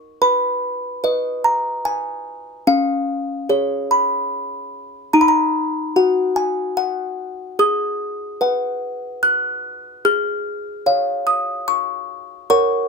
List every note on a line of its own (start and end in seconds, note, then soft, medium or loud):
0.00 0.16 A#4 soft
0.00 0.17 D#5 medium
0.00 0.17 C#6 medium
0.22 1.01 B4 medium
0.22 1.40 B5 medium
1.04 2.63 B4 soft
1.04 2.64 D#5 medium
1.44 1.83 A#5 medium
1.85 2.64 G#5 medium
2.67 3.47 C#4 medium
2.67 3.87 F5 medium
3.49 5.09 G#4 soft
3.49 5.10 C#5 soft
3.91 5.10 B5 medium
5.13 5.93 D#4 medium
5.13 5.20 A#5 medium
5.21 5.28 B5 medium
5.28 6.32 A#5 medium
5.96 7.56 F#4 soft
5.96 6.76 F#5 medium
6.36 6.75 G#5 medium
6.77 7.56 F#5 medium
7.59 8.38 G#4 medium
7.59 9.19 D#6 loud
8.41 10.00 B4 soft
8.41 10.00 F#5 soft
9.23 10.01 F#6 loud
10.05 10.84 G#4 medium
10.05 11.23 F6 loud
10.86 12.46 C#5 soft
10.86 12.46 F5 medium
11.27 11.66 D#6 loud
11.68 12.46 C#6 loud
12.50 12.88 A#4 medium
12.50 12.88 C#5 soft
12.50 12.88 F#5 soft
12.50 12.88 C#6 loud